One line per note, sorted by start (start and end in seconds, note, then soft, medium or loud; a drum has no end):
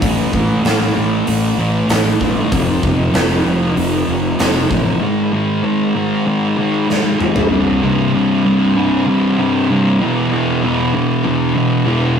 0.01 0.26 A1 medium
0.01 0.31 A2 medium
0.01 0.32 E3 loud
0.01 0.33 A3 loud
0.01 kick loud
0.01 open hi-hat medium
0.32 0.57 A1 medium
0.32 0.63 A2 medium
0.32 0.63 E3 medium
0.32 0.65 A3 medium
0.32 kick medium
0.64 0.89 A1 medium
0.64 0.95 A2 medium
0.64 0.95 E3 loud
0.64 0.96 A3 medium
0.64 snare loud
0.64 open hi-hat medium
0.96 1.20 A1 medium
0.96 1.26 A2 medium
0.96 1.26 E3 medium
0.96 1.27 A3 loud
1.27 1.52 A1 medium
1.27 1.57 A2 medium
1.27 1.57 E3 loud
1.27 1.58 A3 loud
1.27 open hi-hat medium
1.58 1.82 A1 medium
1.58 1.88 A2 medium
1.58 1.89 E3 medium
1.58 1.89 A3 loud
1.89 2.13 A1 medium
1.89 2.20 A2 loud
1.89 2.20 E3 loud
1.89 2.21 A3 medium
1.89 snare loud
1.89 open hi-hat medium
2.21 2.45 G1 medium
2.21 2.50 A2 medium
2.21 2.51 E3 medium
2.21 2.51 A3 medium
2.21 kick medium
2.52 2.76 F1 medium
2.52 2.82 F2 loud
2.52 2.83 C3 medium
2.52 2.83 F3 loud
2.52 kick loud
2.52 open hi-hat medium
2.83 3.07 F1 medium
2.83 3.13 F2 medium
2.83 3.13 C3 medium
2.83 3.14 F3 medium
2.83 kick medium
3.14 3.38 F1 loud
3.14 3.45 F2 medium
3.14 3.45 C3 medium
3.14 3.46 F3 loud
3.14 snare loud
3.14 open hi-hat medium
3.45 3.69 F1 medium
3.45 3.75 F2 medium
3.45 3.76 C3 medium
3.45 3.77 F3 medium
3.76 4.00 F1 medium
3.76 4.08 F2 medium
3.76 4.08 C3 loud
3.76 4.09 F3 loud
3.76 open hi-hat soft
4.08 4.32 F1 medium
4.08 4.38 F2 medium
4.08 4.38 C3 medium
4.08 4.39 F3 loud
4.39 4.63 F1 medium
4.39 4.69 F2 medium
4.39 4.70 C3 loud
4.39 4.70 F3 loud
4.39 snare loud
4.39 open hi-hat medium
4.70 4.95 A1 medium
4.70 5.00 F2 medium
4.70 5.00 C3 medium
4.70 5.00 F3 medium
4.70 kick medium
5.01 5.31 G#2 loud
5.01 5.32 D#3 loud
5.01 5.32 G#3 loud
5.32 5.62 G#2 medium
5.32 5.63 D#3 medium
5.32 5.63 G#3 medium
5.63 5.94 G#2 medium
5.63 5.94 D#3 loud
5.63 5.95 G#3 loud
5.95 6.25 G#2 medium
5.95 6.25 D#3 medium
5.95 6.26 G#3 medium
6.26 6.56 G#2 medium
6.26 6.57 D#3 loud
6.26 6.57 G#3 loud
6.57 6.87 G#2 medium
6.57 6.87 D#3 loud
6.57 6.88 G#3 loud
6.88 7.18 G#2 loud
6.88 7.19 D#3 loud
6.88 7.19 G#3 loud
6.88 snare medium
7.19 7.49 G#2 medium
7.19 7.49 D#3 medium
7.19 7.49 G#3 medium
7.19 mid tom medium
7.36 floor tom medium
7.50 7.81 C2 loud
7.50 7.82 G2 loud
7.50 7.82 C3 loud
7.82 8.13 C2 medium
7.82 8.13 G2 medium
7.82 8.13 C3 loud
8.14 8.44 C2 medium
8.14 8.44 G2 medium
8.14 8.45 C3 medium
8.45 8.75 C2 loud
8.45 8.76 G2 loud
8.45 8.76 C3 loud
8.76 9.06 C2 medium
8.76 9.07 G2 medium
8.76 9.07 C3 medium
9.07 9.37 C2 loud
9.07 9.38 G2 loud
9.07 9.39 C3 loud
9.39 9.69 C2 medium
9.39 9.69 G2 medium
9.39 9.70 C3 medium
9.70 9.99 C2 medium
9.70 9.99 G2 medium
9.70 9.99 C3 medium
10.01 10.31 E2 loud
10.01 10.31 B2 loud
10.01 10.32 E3 loud
10.32 10.62 E2 medium
10.32 10.62 B2 loud
10.32 10.63 E3 medium
10.63 10.92 E2 medium
10.63 10.93 B2 medium
10.63 10.93 E3 medium
10.94 11.23 E2 loud
10.94 11.24 B2 loud
10.94 11.25 E3 loud
11.25 11.54 E2 medium
11.25 11.55 B2 medium
11.25 11.55 E3 loud
11.55 11.85 E2 loud
11.55 11.85 B2 loud
11.55 11.86 E3 loud
11.86 12.16 E2 loud
11.86 12.17 B2 medium
11.86 12.18 E3 loud